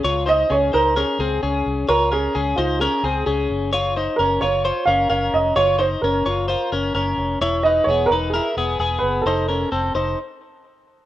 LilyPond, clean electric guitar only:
\new Staff \with { instrumentName = "Clean electric guitar" } { \time 4/4 \key des \major \tempo 4 = 130 <f' des''>8 <ees' c''>8 <des' aes'>8 <ees' c''>8 <des' bes'>8 <c' aes'>8 <des' aes'>4 | <f' des''>8 <des' bes'>8 <des' aes'>8 <ees' c''>8 <des' bes'>8 <c' aes'>8 <des' aes'>4 | <f' des''>8 <ees' c''>8 <des' bes'>8 <f' des''>8 <f' c''>8 <des' bes'>8 <des' bes'>4 | <f' des''>8 <ees' c''>8 <des' bes'>8 <f' des''>8 <f' c''>8 <des' bes'>8 <des' bes'>4 |
<e' des''>8 <ees' b'>8 <b gis'>8 <ees' b'>8 <e' bes'>8 <b gis'>8 <b gis'>4 | <ees' c''>8 <des' bes'>8 <c' a'>8 <ees' c''>8 r2 | }